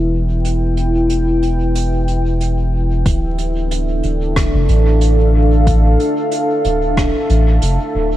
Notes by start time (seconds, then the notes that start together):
Already playing: E1 E4 B4 E5 G5
0.45 closed hi-hat
0.77 closed hi-hat
1.10 closed hi-hat
1.43 closed hi-hat
1.75 closed hi-hat
2.08 closed hi-hat
2.41 closed hi-hat
3.06 D1 D4, kick, closed hi-hat
3.21 A4
3.38 closed hi-hat
3.71 closed hi-hat
4.03 D1, closed hi-hat
4.18 F5
4.36 kick, cross-stick, closed hi-hat
4.54 F1
4.69 A1, closed hi-hat
5.01 closed hi-hat
5.67 kick, closed hi-hat
6.00 closed hi-hat
6.31 closed hi-hat
6.65 D1, closed hi-hat
6.97 kick, cross-stick, closed hi-hat
7.30 A1, closed hi-hat
7.62 F1, closed hi-hat
7.95 D1